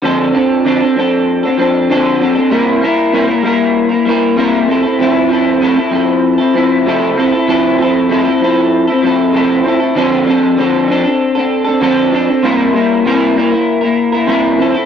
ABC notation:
X:1
M:4/4
L:1/16
Q:1/4=97
K:Dm
V:1 name="Clean electric guitar"
[D,F,CDA]2 [F,CDA]2 [D,F,CDA] [CDA] [F,CDA]3 [CDA] [F,CDA]2 [D,F,CDA]2 [F,CDA] [CDA] | [C,G,B,EB]2 [G,B,EB]2 [C,G,B,EB] [B,EB] [G,B,EB]3 [B,EB] [G,B,EB]2 [C,G,B,EB]2 [F,CEA] [CEA] | [C,F,CEA]2 [F,CEA]2 [C,F,CEA] [CEA] [F,CEA]3 [CEA] [F,CEA]2 [C,F,CEA]2 [F,CEA] [CEA] | [C,F,CEA]2 [F,CEA]2 [C,F,CEA] [CEA] [F,CEA]3 [CEA] [F,CEA]2 [C,F,CEA]2 [F,CEA] [CEA] |
[D,F,CDA]2 [F,CDA]2 [D,F,CDA]2 [F,CDA] [CDA]2 [CDA]2 [CDA] [D,F,CDA]2 [F,CDA] [CDA] | [C,G,B,EB]2 [G,B,EB]2 [C,G,B,EB]2 [G,B,EB] [B,EB]2 [B,EB]2 [B,EB] [C,G,B,EB]2 [F,CEA] [CEA] |]